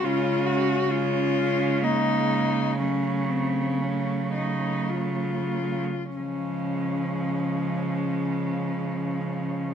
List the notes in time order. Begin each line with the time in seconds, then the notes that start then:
0.04 C#3 G#3 C#4 F4
0.46 F#4
0.91 G#3 C#4 F4
1.82 A#3 D#4
2.79 F#3 A3 C#4
3.29 C4
3.81 F#3 A3 C#4
4.34 D#4
4.89 F4
6.16 C#3 F3 G#3 C#4